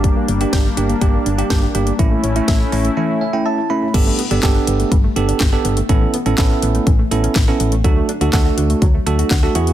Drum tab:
CC |----------------|----------------|x---------------|----------------|
HH |x-xxx-xxx-xxx-xx|x-xxx-ox--------|x-xxx-xxx-xxx-xx|x-xxx-xxx-xxx-xx|
CP |----------------|----------------|----x-------x---|----x-------x---|
SD |----o-------o---|----o-----------|----o-------o---|----o-------o---|
BD |o---o---o---o---|o---o-----------|o---o---o---o---|o---o---o---o---|

CC |----------------|
HH |x-xxx-xxx-xxx-xx|
CP |----x-------x---|
SD |----o-------o---|
BD |o---o---o---o---|